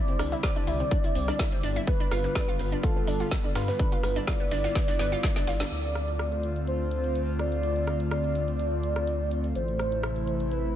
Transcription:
Already playing: analog synth pad D3 G3 C4 E4, soft synth lead D5
0.08 synth pluck C4, closed hi-hat
0.19 detuned saw bass C2, synth pluck D4, cross-stick, closed hi-hat, open hi-hat, shaker
0.32 synth pluck E4, snare, closed hi-hat, shaker
0.43 synth pluck C4, soft synth lead D5, kick, cross-stick, snare, closed hi-hat, open hi-hat, shaker
0.56 synth pluck D4, closed hi-hat
0.67 detuned saw bass C2, synth pluck E4, closed hi-hat, open hi-hat, shaker
0.80 synth pluck C4, closed hi-hat, shaker
0.91 synth pluck D4, kick, closed hi-hat, shaker
1.04 synth pluck E4, closed hi-hat
1.15 detuned saw bass C2, synth pluck C4, closed hi-hat, open hi-hat, shaker
1.28 synth pluck D4, cross-stick, snare, closed hi-hat, shaker
1.39 synth pluck E4, kick, snare, closed hi-hat, shaker
1.52 synth pluck C4, closed hi-hat, shaker
1.63 detuned saw bass G1, synth pluck D4, closed hi-hat, open hi-hat, shaker
1.76 synth pluck E4, closed hi-hat, shaker
1.87 analog synth pad B3 F4, synth pluck B3, soft synth lead B4, kick, closed hi-hat, shaker
2.00 synth pluck D4
2.11 detuned saw bass G1, synth pluck F4, cross-stick, closed hi-hat, open hi-hat, shaker
2.24 synth pluck B3, snare, closed hi-hat, shaker
2.35 synth pluck D4, kick, cross-stick, snare, closed hi-hat, shaker
2.48 synth pluck F4, closed hi-hat
2.59 detuned saw bass G1, synth pluck B3, closed hi-hat, open hi-hat, shaker
2.71 synth pluck D4, closed hi-hat, shaker
2.83 synth pluck F4, soft synth lead A4, kick, closed hi-hat, shaker
2.96 synth pluck B3
3.07 detuned saw bass G1, synth pluck D4, closed hi-hat, open hi-hat, shaker
3.19 synth pluck F4, snare, closed hi-hat, shaker
3.31 synth pluck B3, kick, snare, closed hi-hat, shaker
3.44 synth pluck D4, closed hi-hat, shaker
3.55 detuned saw bass G2, synth pluck F4, soft synth lead B4, cross-stick, snare, closed hi-hat, open hi-hat, shaker
3.68 synth pluck B3, snare, closed hi-hat, shaker
3.79 synth pluck D4, analog synth pad E4, kick, closed hi-hat, shaker
3.92 synth pluck F4, closed hi-hat, shaker
4.03 detuned saw bass G1, synth pluck B3, cross-stick, closed hi-hat, open hi-hat, shaker
4.16 synth pluck D4, snare, closed hi-hat, shaker
4.27 synth pluck F4, soft synth lead D5, kick, cross-stick, snare, closed hi-hat, open hi-hat, shaker
4.40 synth pluck B3, closed hi-hat, shaker
4.51 detuned saw bass G1, synth pluck D4, snare, closed hi-hat, open hi-hat, shaker
4.64 synth pluck F4, snare, closed hi-hat, shaker
4.75 synth pluck B3, kick, snare, closed hi-hat, shaker
4.88 synth pluck D4, snare, closed hi-hat, shaker
4.99 detuned saw bass G1, synth pluck B3, snare, closed hi-hat, open hi-hat, shaker
5.11 synth pluck F4, snare, closed hi-hat, shaker
5.23 synth pluck F4, kick, snare, closed hi-hat, shaker
5.36 synth pluck D4, snare, closed hi-hat, shaker
5.47 detuned saw bass G1, synth pluck F4, snare, closed hi-hat, open hi-hat, shaker
5.60 synth pluck D4, snare, closed hi-hat, shaker
5.71 detuned saw bass D2, analog synth pad D3 A3 C4 F4, soft synth lead D5, closed hi-hat
5.84 closed hi-hat
5.95 cross-stick, closed hi-hat
6.08 closed hi-hat
6.19 cross-stick, closed hi-hat
6.32 closed hi-hat
6.43 closed hi-hat
6.56 closed hi-hat
6.67 soft synth lead C5, closed hi-hat
6.91 closed hi-hat
7.04 closed hi-hat
7.15 closed hi-hat
7.39 soft synth lead D5, cross-stick, closed hi-hat
7.52 closed hi-hat
7.63 closed hi-hat
7.76 closed hi-hat
7.87 cross-stick, closed hi-hat
8.00 closed hi-hat
8.11 soft synth lead D5, cross-stick, closed hi-hat
8.24 closed hi-hat
8.35 closed hi-hat
8.48 closed hi-hat
8.59 closed hi-hat
8.83 closed hi-hat
8.96 cross-stick, closed hi-hat
9.07 closed hi-hat
9.31 closed hi-hat
9.44 closed hi-hat
9.55 detuned saw bass A1, analog synth pad C3 E3 E4, soft synth lead C5, closed hi-hat
9.68 closed hi-hat
9.79 cross-stick, closed hi-hat
9.92 closed hi-hat
10.03 cross-stick, closed hi-hat
10.16 closed hi-hat
10.27 closed hi-hat
10.40 closed hi-hat
10.51 soft synth lead B4, closed hi-hat

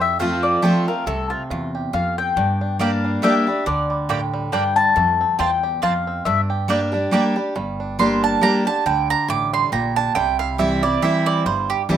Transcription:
Already playing: upright bass F2, steel-string acoustic guitar F2, five-string banjo F4
0.00 five-string banjo G4, mandolin E5
0.19 steel-string acoustic guitar F3 A3 C4 F4, five-string banjo A3, mandolin F5
0.43 five-string banjo F4, mandolin D5
0.62 steel-string acoustic guitar F3 A3 C4 F4, five-string banjo G4, mandolin C5
0.88 five-string banjo A3, steel-string acoustic guitar C4 F4, mandolin A#4
1.06 upright bass C2, steel-string acoustic guitar C3, five-string banjo A3, mandolin A4
1.30 five-string banjo C4, mandolin F4
1.50 upright bass E2, steel-string acoustic guitar E2, five-string banjo F4
1.75 five-string banjo G4
1.93 steel-string acoustic guitar F2, upright bass F2, five-string banjo F4, mandolin F5
2.18 five-string banjo C4, mandolin G5
2.36 upright bass G2, steel-string acoustic guitar G2, five-string banjo D4
2.61 five-string banjo D4
2.79 steel-string acoustic guitar G3 A#3 D4 G4, five-string banjo G3, mandolin A#3 G4 D5 F5 G5
3.05 five-string banjo D4
3.22 steel-string acoustic guitar G3 A#3 D4 G4, mandolin A#3 G4 D5 E5 G5, five-string banjo D4
3.47 five-string banjo G3, steel-string acoustic guitar D4 G4
3.66 upright bass D2, steel-string acoustic guitar D3, five-string banjo D4, mandolin D5
3.90 five-string banjo G3
4.09 steel-string acoustic guitar A2, mandolin A#3 G4 D5 G5, five-string banjo G4
4.34 five-string banjo G3
4.52 steel-string acoustic guitar G2, mandolin A#3 G4 D5 G5, five-string banjo D4
4.76 five-string banjo G3, mandolin A5
4.96 steel-string acoustic guitar F2, upright bass F2, five-string banjo A3
5.21 five-string banjo C4
5.39 steel-string acoustic guitar E2, upright bass E2, mandolin C4 F4 C5 G5 A5, five-string banjo F4
5.63 five-string banjo G4
5.82 steel-string acoustic guitar F2, upright bass F2, mandolin C4 F4 C5 F5 A5, five-string banjo F4
6.07 five-string banjo C4
6.25 upright bass G2, steel-string acoustic guitar G2, five-string banjo D4, mandolin E5
6.50 five-string banjo G4
6.68 steel-string acoustic guitar G3 A#3 D4 G4, five-string banjo G3, mandolin A#3 G4 D5 G5
6.92 five-string banjo D4, steel-string acoustic guitar D4 G4
7.11 steel-string acoustic guitar G3 A#3 D4 G4, mandolin A#3 G4 D5 G5, five-string banjo G4
7.36 five-string banjo G3, steel-string acoustic guitar D4 G4
7.56 upright bass G1, steel-string acoustic guitar G2, five-string banjo G3
7.80 five-string banjo D4
7.99 steel-string acoustic guitar G3 A#3 D4 G4, five-string banjo G3, mandolin C6
8.23 five-string banjo D4, mandolin A5
8.41 steel-string acoustic guitar G3 A#3 D4 G4, five-string banjo D4, mandolin A#5
8.65 five-string banjo D3, steel-string acoustic guitar D4 G4, mandolin A5
8.86 upright bass D2, steel-string acoustic guitar D3, five-string banjo G3, mandolin G5
9.10 five-string banjo D4, mandolin A#5
9.28 upright bass A1, steel-string acoustic guitar A2, five-string banjo G4, mandolin D6
9.53 five-string banjo G3, mandolin C6
9.72 upright bass A#1, steel-string acoustic guitar A#2, five-string banjo G4, mandolin A#5
9.96 five-string banjo D4, mandolin A5
10.15 upright bass C2, steel-string acoustic guitar C3, five-string banjo G3, mandolin G5
10.39 five-string banjo E4, mandolin F5
10.58 steel-string acoustic guitar E3 G3 C4 E4, five-string banjo G4, mandolin E5
10.83 five-string banjo G3, steel-string acoustic guitar C4 E4, mandolin D5
11.02 steel-string acoustic guitar E3 G3 C4 E4, five-string banjo G4, mandolin E5
11.26 five-string banjo E4, mandolin D5
11.46 upright bass G1, steel-string acoustic guitar G2, five-string banjo G3, mandolin C5
11.70 mandolin G4
11.89 upright bass D2, steel-string acoustic guitar E3 G3 C4 E4, five-string banjo G3

